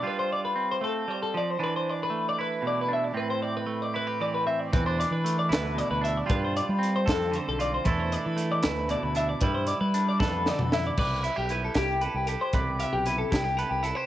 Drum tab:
CC |------------|------------|------------|------------|
HH |------------|------------|------------|x-x-x-x-x-x-|
SD |------------|------------|------------|------o-----|
T2 |------------|------------|------------|------------|
BD |------------|------------|------------|o-----------|

CC |------------|------------|------------|x-----------|
HH |x-x-x-x-x-x-|x-x-x-x-x-x-|x-x-x-------|--x-x-x-x-x-|
SD |------o-----|------o-----|------o-o-o-|------o-----|
T2 |------------|------------|---------o--|------------|
BD |o-----o-----|o-----------|o-----o-----|o-----o-----|

CC |------------|
HH |x-x-x-x-x-x-|
SD |------o-----|
T2 |------------|
BD |o-----o-----|